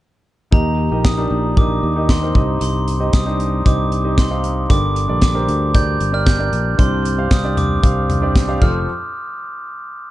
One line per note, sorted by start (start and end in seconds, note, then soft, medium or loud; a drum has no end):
0.51 0.89 D#2 medium
0.51 1.26 A#2 soft
0.51 0.83 D#4 medium
0.51 0.83 G4 medium
0.51 0.83 A#4 soft
0.51 0.84 D#5 medium
0.51 1.07 A#5 medium
0.51 kick medium
0.91 1.28 A#1 medium
0.91 1.12 D#4 medium
0.91 1.12 G4 soft
0.91 1.12 A#4 soft
0.91 1.13 D#5 medium
1.05 1.54 D#6 medium
1.05 kick medium
1.05 snare loud
1.17 1.49 D4 medium
1.17 1.49 D#4 medium
1.17 1.49 G4 medium
1.17 1.49 A#4 medium
1.31 1.79 A#1 medium
1.57 1.88 D#4 medium
1.57 1.88 G4 medium
1.57 1.88 A#4 medium
1.57 1.89 D#5 medium
1.57 2.11 D6 medium
1.57 kick medium
1.83 2.31 D#2 medium
1.96 2.17 D#4 medium
1.96 2.17 G4 medium
1.96 2.17 A#4 medium
1.96 2.17 D#5 medium
2.09 2.46 C6 medium
2.09 kick medium
2.09 snare loud
2.22 2.33 D#4 medium
2.22 2.34 G4 medium
2.22 2.35 A#4 medium
2.22 2.34 C5 medium
2.35 2.59 C2 medium
2.35 3.10 G2 medium
2.35 2.87 D#4 medium
2.35 2.87 G4 soft
2.35 2.88 C5 medium
2.35 2.88 D#5 medium
2.35 kick medium
2.61 3.10 C2 medium
2.61 3.15 C6 medium
2.61 closed hi-hat medium
2.88 closed hi-hat medium
2.99 3.21 D#4 medium
2.99 3.21 G4 medium
2.99 3.21 C5 medium
2.99 3.21 D#5 medium
3.13 3.62 C2 medium
3.13 3.68 D#6 medium
3.13 kick loud
3.13 snare loud
3.13 closed hi-hat medium
3.26 3.58 D4 medium
3.26 3.57 D#4 medium
3.26 3.57 G4 medium
3.26 3.58 C5 medium
3.40 closed hi-hat medium
3.65 4.66 C2 medium
3.65 3.96 D#4 medium
3.65 3.96 G4 medium
3.65 3.97 C5 medium
3.65 3.97 D#5 medium
3.65 4.20 D6 medium
3.65 kick medium
3.65 closed hi-hat medium
3.92 closed hi-hat soft
4.04 4.25 D#4 medium
4.04 4.25 G4 medium
4.04 4.26 C5 medium
4.04 4.26 D#5 medium
4.18 4.55 C6 medium
4.18 kick loud
4.18 snare loud
4.18 closed hi-hat medium
4.30 4.62 D#4 medium
4.30 4.62 G4 medium
4.30 4.62 C5 medium
4.30 4.62 F5 medium
4.44 closed hi-hat medium
4.69 5.06 G1 medium
4.69 5.44 G2 medium
4.69 5.44 D3 medium
4.69 5.01 D4 medium
4.69 5.01 G4 medium
4.69 5.01 A#4 medium
4.69 5.01 D5 medium
4.69 5.19 D6 loud
4.69 kick medium
4.69 closed hi-hat medium
4.96 closed hi-hat medium
5.08 5.46 A#1 medium
5.08 5.29 D4 medium
5.08 5.29 G4 medium
5.08 5.30 A#4 medium
5.08 5.30 D5 medium
5.22 5.76 D6 medium
5.22 kick medium
5.22 snare loud
5.22 closed hi-hat medium
5.34 5.66 D4 medium
5.34 5.66 G4 medium
5.34 5.66 A#4 medium
5.34 5.66 C5 medium
5.48 5.97 D2 medium
5.48 closed hi-hat medium
5.74 6.05 D4 medium
5.74 6.05 G4 medium
5.74 6.05 A#4 medium
5.74 6.06 D5 medium
5.74 6.15 G6 medium
5.74 kick loud
5.74 closed hi-hat medium
6.00 6.49 G1 medium
6.00 closed hi-hat medium
6.12 6.34 D4 medium
6.12 6.34 G4 medium
6.12 6.34 A#4 medium
6.12 6.34 D5 medium
6.12 6.27 F6 medium
6.26 6.63 G6 loud
6.26 kick loud
6.26 snare loud
6.26 closed hi-hat medium
6.38 6.70 D4 medium
6.38 6.70 G4 medium
6.38 6.71 A#4 medium
6.38 6.71 D5 medium
6.53 6.77 A#1 medium
6.53 closed hi-hat medium
6.78 7.27 C2 medium
6.78 7.53 G2 medium
6.78 7.09 D4 medium
6.78 7.10 G4 medium
6.78 7.10 C5 medium
6.78 7.10 D5 medium
6.78 7.33 C6 medium
6.78 kick medium
6.78 closed hi-hat medium
7.05 closed hi-hat medium
7.17 7.38 D4 medium
7.17 7.39 G4 soft
7.17 7.39 C5 medium
7.17 7.39 F5 medium
7.31 7.80 C2 medium
7.31 7.58 D#6 medium
7.31 kick loud
7.31 snare loud
7.31 closed hi-hat medium
7.44 7.75 D4 medium
7.44 7.75 G4 medium
7.44 7.75 C5 medium
7.44 7.76 D5 medium
7.57 8.32 D6 medium
7.57 closed hi-hat medium
7.57 floor tom medium
7.82 8.58 C2 medium
7.82 8.14 D4 medium
7.82 8.14 G4 medium
7.82 8.14 C5 medium
7.82 8.14 F5 medium
7.82 kick medium
7.82 closed hi-hat medium
8.10 closed hi-hat medium
8.10 floor tom medium
8.22 8.43 D4 medium
8.22 8.43 G4 medium
8.22 8.43 C5 medium
8.22 8.43 D5 medium
8.36 kick loud
8.36 snare loud
8.36 closed hi-hat medium
8.48 8.61 D4 medium
8.48 8.61 G4 medium
8.48 8.60 C5 medium
8.48 8.62 F5 medium
8.61 8.86 F1 medium
8.61 8.86 F2 medium
8.61 8.86 C4 medium
8.61 8.86 F4 medium
8.61 8.86 A4 medium
8.61 8.86 C5 medium
8.61 8.86 F6 medium
8.61 kick medium
8.61 crash medium